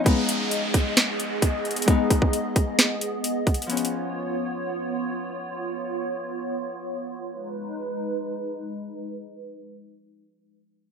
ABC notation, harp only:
X:1
M:4/4
L:1/8
Q:1/4=132
K:G#dor
V:1 name="Harp"
[G,B,D]8 | [G,B,D]8 | [E,B,C]8 | z8 |
z8 | z8 |]